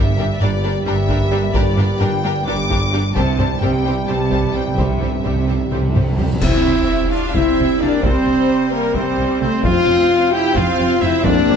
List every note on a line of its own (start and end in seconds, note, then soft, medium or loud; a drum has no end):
0.00 0.35 G1 medium
0.00 0.35 G2 medium
0.00 2.99 G2 medium
0.00 2.99 G3 medium
0.00 2.99 A#3 medium
0.00 2.99 G4 medium
0.00 0.39 E5 medium
0.17 0.27 G3 medium
0.17 0.28 D4 medium
0.17 0.25 G4 soft
0.17 0.25 A#4 medium
0.17 taiko low-mid medium
0.39 0.81 G1 medium
0.39 0.81 G2 medium
0.39 0.50 G3 medium
0.39 0.50 D4 medium
0.39 0.48 G4 medium
0.39 0.48 A#4 medium
0.39 0.85 D5 medium
0.39 taiko low-mid medium
0.64 0.72 G3 medium
0.64 0.72 D4 medium
0.64 0.72 G4 medium
0.64 0.72 A#4 medium
0.86 1.46 G1 medium
0.86 1.46 G2 medium
0.86 0.95 G3 medium
0.86 0.95 D4 medium
0.86 0.95 G4 medium
0.86 0.95 A#4 medium
0.86 1.53 E5 medium
1.09 1.17 G3 medium
1.09 1.17 D4 medium
1.09 1.18 G4 medium
1.09 1.18 A#4 medium
1.09 taiko medium
1.32 1.40 G3 medium
1.32 1.40 D4 medium
1.32 1.40 G4 medium
1.32 1.40 A#4 medium
1.54 1.95 G1 medium
1.54 1.95 G2 medium
1.54 1.63 G3 medium
1.54 1.63 D4 medium
1.54 1.62 G4 medium
1.54 1.62 A#4 medium
1.54 2.00 D5 medium
1.54 taiko loud
1.76 1.84 G3 medium
1.76 1.85 D4 medium
1.76 1.86 G4 medium
1.76 1.86 A#4 medium
1.76 taiko low-mid soft
1.99 2.42 G1 medium
1.99 2.42 G2 medium
1.99 2.09 G3 medium
1.99 2.09 D4 medium
1.99 2.07 G4 medium
1.99 2.08 A#4 medium
1.99 2.47 G5 loud
1.99 taiko low-mid medium
2.24 2.32 G3 medium
2.24 2.32 D4 medium
2.24 2.32 G4 medium
2.24 2.32 A#4 medium
2.47 3.09 G1 medium
2.47 3.08 G2 medium
2.47 2.55 G3 medium
2.47 2.55 D4 medium
2.47 2.55 G4 medium
2.47 2.56 A#4 medium
2.47 3.14 D6 loud
2.70 2.78 G3 medium
2.70 2.78 D4 medium
2.70 2.78 G4 medium
2.70 2.78 A#4 medium
2.70 taiko medium
2.93 3.01 G3 medium
2.93 3.01 D4 medium
2.93 3.01 G4 medium
2.93 3.02 A#4 medium
3.15 3.57 C2 medium
3.15 6.15 G2 medium
3.15 3.56 C3 medium
3.15 3.23 C3 soft
3.15 6.15 G3 medium
3.15 3.25 G3 medium
3.15 6.15 C4 medium
3.15 3.25 C4 medium
3.15 3.23 G4 medium
3.15 6.15 G4 medium
3.15 3.23 C5 medium
3.15 3.61 A5 medium
3.15 taiko medium
3.24 3.30 C3 soft
3.31 3.38 C3 soft
3.38 3.44 C3 soft
3.38 3.48 G3 medium
3.38 3.47 C4 medium
3.38 3.46 G4 soft
3.38 3.47 C5 medium
3.38 taiko low-mid medium
3.45 3.52 C3 soft
3.53 3.60 C3 soft
3.61 4.03 C2 medium
3.61 3.68 C3 soft
3.61 4.03 C3 medium
3.61 3.72 G3 medium
3.61 3.72 C4 medium
3.61 3.70 G4 medium
3.61 3.70 C5 medium
3.61 4.08 G5 medium
3.61 taiko low-mid medium
3.69 3.75 C3 soft
3.76 3.83 C3 soft
3.84 3.90 C3 soft
3.84 3.94 G3 soft
3.84 3.94 C4 medium
3.84 3.93 G4 medium
3.84 3.93 C5 medium
3.91 3.97 C3 soft
4.08 4.70 C2 medium
4.08 4.70 C3 medium
4.08 4.18 G3 medium
4.08 4.18 C4 medium
4.08 4.16 G4 medium
4.08 4.16 C5 medium
4.08 4.55 A5 medium
4.14 4.20 C3 soft
4.21 4.28 C3 soft
4.29 4.35 C3 soft
4.29 4.40 G3 medium
4.29 4.40 C4 medium
4.29 4.38 G4 soft
4.29 4.38 C5 medium
4.29 taiko medium
4.36 4.43 C3 soft
4.45 4.51 C3 soft
4.52 4.59 C3 medium
4.52 4.64 G3 soft
4.52 4.63 C4 soft
4.52 4.62 G4 soft
4.52 4.62 C5 soft
4.52 4.78 G5 medium
4.60 4.66 C3 soft
4.67 4.73 C3 soft
4.74 4.81 C3 medium
4.74 4.86 G4 medium
4.74 4.85 C5 medium
4.74 6.18 E5 medium
4.74 taiko medium
4.74 reverse cymbal medium
4.78 5.20 C2 medium
4.78 5.20 C3 medium
4.78 4.86 G3 soft
4.78 4.86 C4 soft
4.83 4.89 C3 soft
4.90 4.96 C3 medium
4.98 5.04 C3 medium
4.98 5.09 G3 soft
4.98 5.09 C4 soft
4.98 5.09 G4 soft
5.02 5.12 C3 medium
5.02 5.10 C5 soft
5.02 taiko low-mid soft
5.13 5.19 C3 medium
5.20 5.26 C3 medium
5.20 5.32 G3 soft
5.25 5.67 C2 medium
5.25 5.67 C3 medium
5.25 5.34 C3 medium
5.25 5.33 C4 soft
5.25 5.34 G4 soft
5.25 5.33 C5 soft
5.25 taiko low-mid soft
5.35 5.42 C3 medium
5.43 5.49 C3 medium
5.48 5.57 C3 medium
5.48 5.57 G3 soft
5.48 5.56 C4 soft
5.48 5.57 G4 soft
5.48 5.56 C5 soft
5.58 5.64 C3 medium
5.66 5.72 C3 medium
5.71 6.34 C2 soft
5.71 6.34 C3 medium
5.71 5.80 C3 medium
5.71 5.80 G3 soft
5.71 5.79 C4 soft
5.71 5.82 G4 soft
5.71 5.81 C5 soft
5.71 taiko mid medium
5.81 5.87 C3 medium
5.88 5.94 C3 medium
5.94 6.03 C3 medium
5.94 6.03 G3 soft
5.94 6.03 C4 soft
5.94 6.03 G4 soft
5.94 6.02 C5 soft
5.94 taiko low-mid medium
6.04 6.10 C3 medium
6.11 6.18 C3 medium
6.18 6.25 C3 medium
6.18 6.27 G3 soft
6.18 6.27 C4 soft
6.18 6.26 G4 soft
6.18 6.26 C5 soft
6.18 taiko low medium
6.26 6.32 C3 medium
6.33 6.41 C3 medium
6.40 6.51 C2 medium
6.40 6.50 C3 medium
6.40 9.61 C3 medium
6.40 9.61 G3 medium
6.40 7.08 C4 medium
6.40 7.07 E4 medium
6.40 7.07 E5 medium
6.40 7.08 E5 medium
6.40 concert bass drum medium
6.40 taiko medium
6.40 crash medium
6.40 sub drop medium
6.65 6.73 C2 soft
6.65 6.74 C3 medium
7.11 7.35 D4 medium
7.11 7.34 F4 medium
7.11 7.36 F4 medium
7.11 7.34 F5 medium
7.11 7.35 F5 medium
7.34 7.43 C2 medium
7.34 7.43 C3 medium
7.34 7.80 C4 medium
7.34 7.79 E4 medium
7.34 7.82 E4 medium
7.34 7.81 E5 medium
7.34 7.80 E5 medium
7.34 7.81 E5 medium
7.34 taiko medium
7.58 7.66 C2 medium
7.58 7.67 C3 medium
7.79 7.89 C2 medium
7.79 7.89 C3 medium
7.79 8.03 A#3 medium
7.79 8.03 D4 medium
7.79 8.05 D4 medium
7.79 8.03 D5 medium
7.79 8.04 D5 medium
8.01 8.12 C2 medium
8.01 8.12 C3 medium
8.01 8.72 G3 medium
8.01 8.71 C4 medium
8.01 8.72 C5 medium
8.01 8.71 C5 medium
8.01 8.73 C5 medium
8.01 taiko medium
8.26 8.34 C2 medium
8.26 8.35 C3 medium
8.71 8.95 G3 medium
8.71 8.94 A#3 medium
8.71 8.96 A#3 medium
8.71 8.95 A#4 medium
8.71 8.96 A#4 medium
8.94 9.04 C2 medium
8.94 9.04 C3 medium
8.94 9.41 G3 medium
8.94 9.41 C4 medium
8.94 9.40 C4 medium
8.94 9.41 C5 medium
8.94 9.40 C5 medium
8.94 taiko medium
9.18 9.26 C2 medium
9.18 9.26 C3 medium
9.41 9.49 C2 medium
9.41 9.49 C3 medium
9.41 9.65 A3 medium
9.41 9.64 C4 medium
9.41 9.65 C4 medium
9.41 9.64 C5 medium
9.41 9.65 C5 medium
9.64 9.72 F1 medium
9.64 9.72 F2 medium
9.64 10.29 F2 loud
9.64 11.56 C3 medium
9.64 11.56 C4 medium
9.64 10.34 C4 medium
9.64 10.32 F4 medium
9.64 10.34 F4 loud
9.64 10.32 F5 medium
9.64 10.33 F5 medium
9.64 10.32 F5 medium
9.64 taiko medium
9.87 9.95 F1 medium
9.87 9.95 F2 medium
10.32 10.56 E4 medium
10.32 10.55 G4 medium
10.32 10.57 G4 medium
10.32 10.55 G5 medium
10.32 10.56 G5 loud
10.32 10.56 G5 medium
10.55 10.64 F1 medium
10.55 10.64 F2 medium
10.55 11.00 C4 medium
10.55 11.03 F4 medium
10.55 11.02 F5 medium
10.55 taiko medium
10.79 10.87 F1 medium
10.79 10.87 F2 medium
11.01 11.10 F1 medium
11.01 11.10 F2 medium
11.01 11.24 C4 medium
11.01 11.26 E4 medium
11.01 11.24 E5 medium
11.01 11.25 E5 medium
11.01 11.24 E5 medium
11.23 11.33 F1 loud
11.23 11.33 F2 loud
11.23 11.56 A#3 loud
11.23 11.56 D4 loud
11.23 11.56 D5 medium
11.23 taiko loud
11.47 11.55 F1 medium
11.47 11.56 F2 medium